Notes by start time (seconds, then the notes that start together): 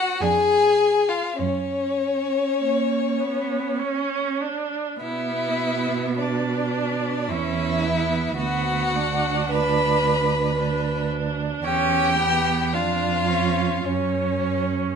Already playing: F#4 F#5
0.21 F2 D4 G#4 G#5
1.08 F4 F5
1.38 F#2 C#4 C#5
2.59 A#3
3.20 B3
3.79 C#4
4.41 D4
4.99 B2 B3 E4 E5
6.19 D4 D5
7.29 E2 C#4 E4 E5
7.83 B3
8.36 D2 B3 F#4 F#5
8.95 D4
9.51 B4 B5
10.57 D4
11.64 E2 C#4 G4 G5
12.18 B3
12.73 F2 D4 F4 F5
13.28 C#4
13.86 F#2 C#4 C#5